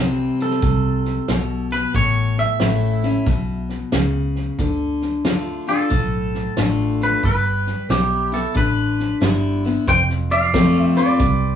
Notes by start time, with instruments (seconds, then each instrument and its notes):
Already playing: fingered electric bass C2, steel-string acoustic guitar C3 E3 G3 C4 E4
0.39 clean electric guitar A4, snare
0.51 snare
0.62 fingered electric bass C2, steel-string acoustic guitar C3, kick, snare
1.05 snare
1.28 fingered electric bass B1, steel-string acoustic guitar B2, snare, hi-hat pedal
1.72 clean electric guitar B4, snare
1.94 fingered electric bass A1, steel-string acoustic guitar A2, clean electric guitar C#5, kick, snare
2.37 clean electric guitar E5, snare
2.60 fingered electric bass A1, steel-string acoustic guitar E3 A3 C#4 E4, snare, hi-hat pedal
3.03 steel-string acoustic guitar C#4 E4, snare
3.26 fingered electric bass B1, steel-string acoustic guitar B2, kick, snare
3.69 snare
3.92 fingered electric bass C#2, steel-string acoustic guitar C#3, snare, hi-hat pedal
4.36 snare
4.58 fingered electric bass D2, steel-string acoustic guitar D3, kick, snare
5.02 snare
5.25 steel-string acoustic guitar D3 A3 D4 F4, snare, hi-hat pedal
5.68 steel-string acoustic guitar D4 F4, clean electric guitar A4, snare
5.90 fingered electric bass B1, steel-string acoustic guitar A2, kick, snare
6.34 snare
6.56 fingered electric bass A1, steel-string acoustic guitar D3 A3 D4 F4, snare, hi-hat pedal
7.01 clean electric guitar B4, snare
7.23 fingered electric bass G1, steel-string acoustic guitar G3, clean electric guitar B4, kick, snare
7.67 snare
7.89 fingered electric bass B1, steel-string acoustic guitar G3 B3 E4, clean electric guitar G4, snare, hi-hat pedal
8.32 steel-string acoustic guitar B3 E4, clean electric guitar A4, snare
8.55 fingered electric bass A1, steel-string acoustic guitar D3, clean electric guitar B4, kick, snare
8.99 snare
9.21 fingered electric bass G1, steel-string acoustic guitar G3 B3 E4, snare, hi-hat pedal
9.64 steel-string acoustic guitar B3 E4, snare
9.88 fingered electric bass F1, steel-string acoustic guitar F2, clean electric guitar C5 G5, kick, snare
10.09 snare
10.31 clean electric guitar D5 F5, snare
10.42 snare
10.54 steel-string acoustic guitar F3 A3 C4 F4, kick, snare, hi-hat pedal
10.80 clean electric guitar E5
10.97 steel-string acoustic guitar C4 F4, clean electric guitar B4 D5, snare
11.19 fingered electric bass C2, steel-string acoustic guitar C3, kick, snare